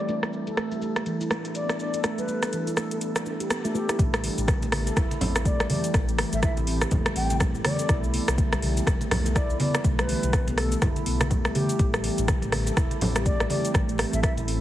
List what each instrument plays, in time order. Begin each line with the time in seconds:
Already playing: bansuri D5
0.09 synth stab A3 D4 F4 B4, ambient pad B3 D4 A4, closed hi-hat, cabasa
0.23 cross-stick, cabasa
0.33 cabasa
0.47 handpan A4, closed hi-hat, cabasa
0.57 handpan A3, cross-stick, closed hi-hat, cabasa
0.72 handpan G3, closed hi-hat, cabasa
0.82 handpan A3, cabasa
0.96 cross-stick, closed hi-hat, cabasa
1.06 handpan E3, closed hi-hat, cabasa
1.21 handpan E4, closed hi-hat, cabasa
1.30 synth stab A3 D4 F4 B4, cross-stick, cabasa
1.45 closed hi-hat, cabasa
1.55 bansuri D5, closed hi-hat, cabasa
1.69 cross-stick, cabasa
1.79 bansuri D5, cabasa
1.94 handpan A4, closed hi-hat, cabasa
2.04 synth stab A3 D4 F4 E5, handpan A3, cross-stick, closed hi-hat, cabasa
2.18 handpan G3, bansuri B4, closed hi-hat, cabasa
2.28 handpan A3, cabasa
2.43 cross-stick, closed hi-hat, cabasa
2.53 handpan E3, closed hi-hat, cabasa
2.67 handpan E4, closed hi-hat, cabasa
2.77 handpan A3, bansuri A4, cross-stick, cabasa
2.91 closed hi-hat, cabasa
3.01 closed hi-hat, cabasa
3.16 cross-stick, closed hi-hat, cabasa
3.26 synth stab A3 D4 F4 B4, cabasa
3.40 handpan G4, closed hi-hat, cabasa
3.50 handpan B3, cross-stick, closed hi-hat, cabasa
3.64 synth stab A3 D4 F4 E5, handpan A4, closed hi-hat, cabasa
3.74 synth stab A3 D4 F4 B4, handpan D4, bansuri G4, cabasa
3.89 handpan E4, cross-stick, closed hi-hat, cabasa
3.99 analog synth bass A1, ambient pad E3 A3 C4 G4, handpan A3, kick, closed hi-hat, muted conga, cabasa
4.14 handpan G3, cross-stick, cabasa
4.24 handpan E3, open hi-hat, muted conga
4.38 analog synth bass A1, closed hi-hat, cabasa
4.48 kick, cross-stick, closed hi-hat, high conga, cabasa
4.62 analog synth bass A1, handpan A3, closed hi-hat, muted conga, cabasa
4.72 cross-stick, open hi-hat, high conga
4.87 handpan A4, closed hi-hat, muted conga, cabasa
4.97 analog synth bass E1, handpan E4, kick, cross-stick, closed hi-hat, cabasa
5.11 closed hi-hat, muted conga, cabasa
5.21 analog synth bass A1, handpan C4, open hi-hat, low conga
5.35 cross-stick, closed hi-hat, muted conga, cabasa
5.45 handpan A3, bansuri D5, kick, closed hi-hat, cabasa
5.60 analog synth bass A1, handpan G3, cross-stick, cabasa
5.70 handpan E3, bansuri D5, open hi-hat, muted conga, high conga
5.84 closed hi-hat, cabasa
5.94 analog synth bass A1, kick, cross-stick, closed hi-hat, muted conga, cabasa
6.09 handpan A3, closed hi-hat, cabasa
6.18 cross-stick, open hi-hat, muted conga
6.33 analog synth bass A1, handpan A4, bansuri E5, closed hi-hat, cabasa
6.43 handpan E4, bansuri E5, kick, cross-stick, closed hi-hat, cabasa
6.57 analog synth bass A1, closed hi-hat, muted conga, cabasa
6.67 handpan C4, open hi-hat
6.81 cross-stick, closed hi-hat, muted conga, cabasa
6.91 analog synth bass E1, handpan A3, kick, closed hi-hat, high conga, low conga, cabasa
7.06 handpan G3, cross-stick, closed hi-hat, muted conga, cabasa
7.16 analog synth bass A1, handpan E3, bansuri G5, open hi-hat
7.30 closed hi-hat, muted conga, high conga, cabasa
7.40 kick, cross-stick, closed hi-hat, low conga, cabasa
7.55 analog synth bass A1, handpan A3, cabasa
7.65 bansuri D5, cross-stick, open hi-hat, muted conga, high conga
7.79 handpan A4, closed hi-hat, cabasa
7.89 analog synth bass B1, ambient pad D3 B3, handpan E4, kick, cross-stick, closed hi-hat, muted conga, cabasa
8.04 cabasa
8.14 handpan B3, open hi-hat, muted conga
8.28 analog synth bass B1, cross-stick, closed hi-hat, cabasa
8.38 handpan A3, kick, closed hi-hat, high conga, cabasa
8.52 analog synth bass B1, handpan G3, cross-stick, closed hi-hat, muted conga, cabasa
8.62 handpan E3, open hi-hat, high conga
8.77 closed hi-hat, muted conga, cabasa
8.87 analog synth bass F1, kick, cross-stick, closed hi-hat, cabasa
9.01 handpan A3, closed hi-hat, muted conga, cabasa
9.11 analog synth bass B1, cross-stick, open hi-hat, low conga
9.26 handpan A4, closed hi-hat, muted conga, cabasa
9.35 handpan E4, bansuri D5, kick, cross-stick, closed hi-hat, cabasa
9.50 analog synth bass B1, cabasa
9.60 handpan B3, bansuri D5, open hi-hat, muted conga, high conga
9.75 cross-stick, closed hi-hat, cabasa
9.84 analog synth bass B1, handpan A3, ambient pad G4, kick, closed hi-hat, muted conga, cabasa
9.99 handpan G3, bansuri B4, cross-stick, closed hi-hat, cabasa
10.08 handpan E3, open hi-hat, muted conga
10.23 analog synth bass B1, closed hi-hat, cabasa
10.33 kick, cross-stick, closed hi-hat, cabasa
10.48 analog synth bass B1, handpan A3, closed hi-hat, muted conga, cabasa
10.58 bansuri A4, cross-stick, open hi-hat
10.72 handpan A4, closed hi-hat, muted conga, cabasa
10.82 analog synth bass F1, handpan E4, kick, cross-stick, closed hi-hat, high conga, low conga, cabasa
10.96 closed hi-hat, muted conga, cabasa
11.06 analog synth bass B1, handpan B3, open hi-hat
11.21 cross-stick, closed hi-hat, muted conga, high conga, cabasa
11.31 handpan A3, kick, closed hi-hat, low conga, cabasa
11.45 analog synth bass B1, handpan G3, cross-stick, cabasa
11.55 handpan E3, bansuri G4, open hi-hat, muted conga, high conga
11.69 closed hi-hat, cabasa
11.79 analog synth bass A1, ambient pad E3 C4 G4, handpan A3, kick, closed hi-hat, muted conga, cabasa
11.94 handpan G3, cross-stick, cabasa
12.04 handpan E3, open hi-hat, muted conga
12.18 analog synth bass A1, closed hi-hat, cabasa
12.28 kick, cross-stick, closed hi-hat, high conga, cabasa
12.42 analog synth bass A1, handpan A3, closed hi-hat, muted conga, cabasa
12.52 cross-stick, open hi-hat, high conga
12.67 handpan A4, closed hi-hat, muted conga, cabasa
12.77 analog synth bass E1, handpan E4, kick, cross-stick, closed hi-hat, cabasa
12.91 closed hi-hat, muted conga, cabasa
13.01 analog synth bass A1, handpan C4, open hi-hat, low conga
13.15 handpan G3, cross-stick, closed hi-hat, muted conga, cabasa
13.26 handpan A3, bansuri D5, kick, closed hi-hat, cabasa
13.40 analog synth bass A1, handpan G3, cross-stick, cabasa
13.50 handpan E3, bansuri D5, open hi-hat, muted conga, high conga
13.65 closed hi-hat, cabasa
13.74 analog synth bass A1, ambient pad A4, kick, cross-stick, closed hi-hat, muted conga, cabasa
13.89 handpan A3, closed hi-hat, cabasa
13.98 cross-stick, open hi-hat, muted conga
14.13 analog synth bass A1, handpan A4, bansuri E5, closed hi-hat, cabasa
14.23 handpan E4, bansuri E5, kick, cross-stick, closed hi-hat, cabasa
14.37 analog synth bass A1, closed hi-hat, muted conga, cabasa
14.47 handpan C4, open hi-hat